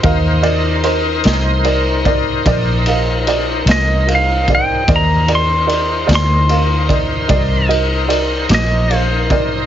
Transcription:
<<
  \new Staff \with { instrumentName = "Electric slide guitar" } { \time 12/8 \key c \minor \tempo 4. = 50 c''4. r2. ees''8 f''8 g''8 | bes''8 c'''4 c'''2 r4 ees''8 c''4 | }
  \new Staff \with { instrumentName = "Tonewheel organ" } { \time 12/8 \key c \minor <ees' bes' c''>1. | <ees' bes' c''>1. | }
  \new Staff \with { instrumentName = "Upright piano" } { \time 12/8 \key c \minor <ees' bes' f''>8 <ees' bes' d''>8 <ees' bes' c''>8 <ees' bes' ees''>8 <ees' bes' d''>8 <ees' bes' d''>8 <ees' bes' d''>8 <ees' bes' f''>8 <ees' bes' d''>8 <ees' bes' ees''>8 <ees' bes' f''>8 <ees' bes' d''>8 | <ees' bes' d''>8 <ees' bes' d''>8 <ees' bes' d''>8 <ees' bes' d''>8 <ees' bes' f''>8 <ees' bes' d''>8 <ees' bes' d''>8 <ees' bes' ees''>8 <ees' bes' d''>8 <ees' bes' d'''>8 <ees' bes' f''>8 <ees' bes' d''>8 | }
  \new Staff \with { instrumentName = "Fingered electric bass" } { \clef bass \time 12/8 \key c \minor ees,4. c,4. bes,,4. c,4. | ees,4. d,4. c,4. bes,,4. | }
  \new DrumStaff \with { instrumentName = "Drums" } \drummode { \time 12/8 <bd cymr>8 cymr8 cymr8 <cymr sn>8 cymr8 <bd cymr>8 <bd cymr>8 cymr8 cymr8 <cymr sn>8 cymr8 <bd cymr>8 | <bd cymr>8 cymr8 cymr8 <cymr sn>8 cymr8 <bd cymr>8 <bd cymr>8 cymr8 cymr8 <cymr sn>8 cymr8 <bd cymr>8 | }
>>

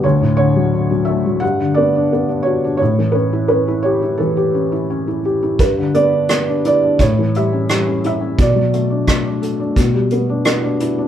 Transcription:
<<
  \new Staff \with { instrumentName = "Felt piano" } { \time 4/4 \key a \mixolydian \tempo 4 = 87 << { cis''8 cis''4 e''8 fis''8 d''4 cis''8 | cis''8 b'8 b'8 cis''8 a'4. r8 | b'8 d''4 d''8 cis''8 e''4 e''8 | d''2.~ d''8 r8 | } \\ { d,16 a,16 d16 fis16 d16 fis16 a16 fis16 g,16 d16 b16 d'16 b16 d'16 fis'16 d'16 | a,16 e16 cis'16 e'16 cis'16 e'16 g'16 e'16 e16 g'16 cis'16 e'16 cis'16 e'16 g'16 e'16 | g,16 d16 b16 d'16 b16 d'16 e'16 d'16 a,16 e16 g16 cis'16 g16 cis'16 e'16 cis'16 | b,16 fis16 a16 d'16 a16 d'16 a'16 d'16 b,16 g16 b16 d'16 b16 d'16 e'16 d'16 | } >> }
  \new DrumStaff \with { instrumentName = "Drums" } \drummode { \time 4/4 r4 r4 r4 r4 | r4 r4 r4 r4 | <hh bd>8 hh8 <hh ss>8 hh8 <hh bd>8 hh8 <hh ss>8 hh8 | <hh bd>8 hh8 <hh bd ss>8 hh8 <hh bd>8 hh8 <hh ss>8 hh8 | }
>>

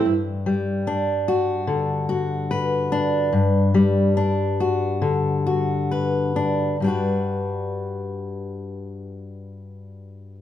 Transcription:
\new Staff \with { instrumentName = "Steel-string acoustic guitar" } { \time 4/4 \key g \major \tempo 4 = 69 << { r4 d'8 fis'4 fis'8 b'8 d'8 | r4 d'8 fis'4 fis'8 b'8 d'8 | <g d' fis' b'>1 | } \\ { g,8 g4. d2 | g,8 g4. d2 | g,1 | } >> }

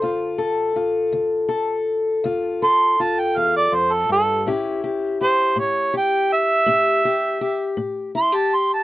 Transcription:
<<
  \new Staff \with { instrumentName = "Harmonica" } { \time 12/8 \key d \minor \tempo 4. = 54 c''8 r2. c'''8 a''16 g''16 f''16 d''16 c''16 a'16 a'8 | r4 c''8 cis''8 g''8 e''2 r8 c'''16 a''16 c'''16 a''16 | }
  \new Staff \with { instrumentName = "Steel-string acoustic guitar" } { \time 12/8 \key d \minor << { <d f'>8 a'8 f'4 a'4 f'8 a'8 f'2 | <cis' e' g'>8 g'8 g'4 g'4 g'8 g'8 g'4 e'16 g'8. | } \\ { d,4 r8 d,4 r8 d,4 r8 e,8 f,8 g,8 | a,4 r8 a,4 r8 a,4 r8 a,4 r8 | } >> }
>>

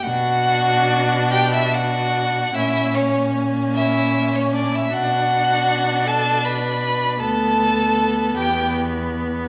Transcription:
<<
  \new Staff \with { instrumentName = "Violin" } { \time 6/8 \key b \minor \tempo 4. = 51 fis''4. g''16 e''16 fis''4 | e''8 cis''8 r8 e''8. cis''16 d''16 e''16 | fis''4. a''8 b''4 | a''4. g''8 r4 | }
  \new Staff \with { instrumentName = "Violin" } { \time 6/8 \key b \minor fis'4. g'16 e'16 fis'4 | e'8 cis'8 r8 e'8. cis'16 d'16 e'16 | fis'4. a'8 b'4 | a'4. g'8 r4 | }
  \new Staff \with { instrumentName = "Viola" } { \time 6/8 \key b \minor d'2. | cis'2. | d'2. | b2. | }
  \new Staff \with { instrumentName = "Cello" } { \clef bass \time 6/8 \key b \minor b,2. | ais,2. | b,2. | d,4. e,4. | }
>>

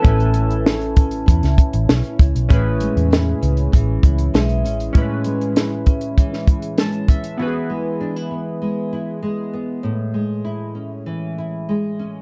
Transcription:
<<
  \new Staff \with { instrumentName = "Clean electric guitar" } { \time 4/4 \key a \major \tempo 4 = 98 a'2. r4 | r1 | r1 | r1 |
r1 | }
  \new Staff \with { instrumentName = "Synth keys" } { \time 4/4 \key a \major << { r1 | r1 | r2. a''8 e''8 | r1 |
r1 | } \\ { <cis' e' b' gis''>1 | <cis' e' gis' b'>1 | <gis cis' e' b'>1 | <b e' fis' gis' b'>1 |
r1 | } >> }
  \new Staff \with { instrumentName = "Nylon-string guitar" } { \time 4/4 \key a \major <a, e'>8 cis'4 cis'8 e'4 cis'8 e'8 | a,8 gis8 e'8 cis'8 e8 e'8 gis8 cis'8 | a,8 gis8 e'8 cis'8 e8 e'8 gis8 cis'8 | e8 gis8 d'16 e'16 b8 gis8 e'8 gis8 b8 |
a,8 gis8 e'8 cis'8 e8 e'8 gis8 cis'8 | }
  \new Staff \with { instrumentName = "Picked electric bass" } { \clef bass \time 4/4 \key a \major a,,2 e,16 cis,16 r16 a,,16 b,,16 r16 cis,16 b,,16 | a,,8. e,8. cis,8 a,,8 cis,8 b,,8 a,,8 | r1 | r1 |
r1 | }
  \new DrumStaff \with { instrumentName = "Drums" } \drummode { \time 4/4 <hh bd>16 hh16 hh16 hh16 sn16 hh16 <hh bd>16 hh16 <hh bd>16 <hh sn>16 <hh bd>16 hh16 sn16 hh16 <hh bd>16 hh16 | <hh bd>8 hh16 hh16 <hh sn>8 hh16 hh16 <hh bd>8 <hh bd>16 hh16 <hh sn>16 hh16 hh16 hh16 | <hh bd>8 hh16 hh16 <hh sn>8 <hh bd>16 hh16 <hh bd>16 sn16 <hh bd>16 hh16 <hh sn>16 hh16 <hh bd>16 hh16 | r4 r4 r4 r4 |
r4 r4 r4 r4 | }
>>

